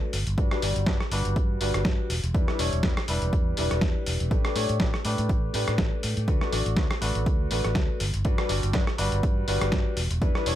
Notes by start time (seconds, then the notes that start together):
Already playing: A3 D4 F#4 B4
0.13 G1, open hi-hat
0.27 G1, closed hi-hat
0.38 G2 G3 D4 F#4 B4, kick, closed hi-hat
0.51 G3 D4 F#4 B4, cross-stick
0.62 G1 G3 D4 F#4 D5, open hi-hat
0.76 G1, closed hi-hat
0.86 G2 G3 D4 F#4 B4, kick, snare, closed hi-hat
1.00 cross-stick
1.12 G1 G3 D4 F#4 B4, open hi-hat
1.25 G1, closed hi-hat
1.36 G2, kick, closed hi-hat
1.61 G1 G3 D4 F#4 B4, open hi-hat
1.74 G1, cross-stick, closed hi-hat
1.85 G2, kick, snare, closed hi-hat
2.10 E1, open hi-hat
2.24 E1, closed hi-hat
2.34 E2 G3 D4 E4 B4, kick, closed hi-hat
2.48 G3 D4 E4 B4, cross-stick
2.59 E1 G3 D4 E4 C#5, open hi-hat
2.73 E1, closed hi-hat
2.83 E2 G3 D4 E4 B4, kick, snare, closed hi-hat
2.97 cross-stick
3.08 E1 G3 D4 E4 B4, open hi-hat
3.22 E1, closed hi-hat
3.33 E2, kick, closed hi-hat
3.57 E1 G3 D4 E4 B4, open hi-hat
3.71 E1, cross-stick, closed hi-hat
3.81 E2, kick, snare, closed hi-hat
4.06 E1, open hi-hat
4.20 E1, closed hi-hat
4.31 A1 A3 D4 G4 B4, kick, closed hi-hat
4.45 A3 D4 G4 B4, cross-stick
4.56 A2 A3 D4 G4 C#5, open hi-hat
4.69 A2, closed hi-hat
4.80 A1 A3 D4 G4 B4, kick, snare, closed hi-hat
4.94 cross-stick
5.04 A2 A3 D4 G4 B4, open hi-hat
5.18 A2, closed hi-hat
5.29 A1, kick, closed hi-hat
5.53 A2 A3 D4 G4 B4, open hi-hat
5.68 A2, cross-stick, closed hi-hat
5.78 A1, kick, snare, closed hi-hat
6.03 A2, open hi-hat
6.17 A2, closed hi-hat
6.27 D2 A3 D4 F#4 B4, kick, closed hi-hat
6.41 A3 D4 F#4 B4, cross-stick
6.52 A1 A3 D4 F#4 D5, open hi-hat
6.66 A1, closed hi-hat
6.77 D2 A3 D4 F#4 B4, kick, snare, closed hi-hat
6.91 cross-stick
7.01 A1 A3 D4 F#4 B4, open hi-hat
7.15 A1, closed hi-hat
7.26 D2, kick, closed hi-hat
7.51 A1 A3 D4 F#4 B4, open hi-hat
7.65 A1, cross-stick, closed hi-hat
7.75 D2, kick, snare, closed hi-hat
8.00 G1, open hi-hat
8.14 G1, closed hi-hat
8.25 G2 G3 D4 F#4 B4, kick, closed hi-hat
8.38 G3 D4 F#4 B4, cross-stick
8.48 G1 G3 D4 F#4 D5, open hi-hat
8.63 G1, closed hi-hat
8.73 G2 G3 D4 F#4 B4, kick, snare, closed hi-hat
8.87 cross-stick
8.98 G1 G3 D4 F#4 B4, open hi-hat
9.12 G1, closed hi-hat
9.23 G2, kick, closed hi-hat
9.47 G1 G3 D4 F#4 B4, open hi-hat
9.61 G1, cross-stick, closed hi-hat
9.72 G2, kick, snare, closed hi-hat
9.97 E1, open hi-hat
10.11 E1, closed hi-hat
10.22 E2 G3 D4 E4 B4, kick, closed hi-hat
10.35 G3 D4 E4 B4, cross-stick
10.46 E1 G3 D4 E4 C#5, open hi-hat